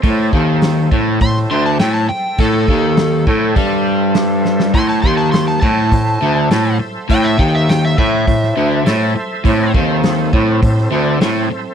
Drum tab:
HH |o---o---o---o---|o---o---o---o---|o---o---o---o---|o---o---o---o---|
SD |----o----o--o---|----o-------o-oo|----o-------o---|----o----o--o---|
BD |o-o---o-o-------|o-o---o-o-------|o-o---o-o-------|o-o---o-o-------|

HH |o---o---o---o---|
SD |----o----o--o---|
BD |o-o---o-o-------|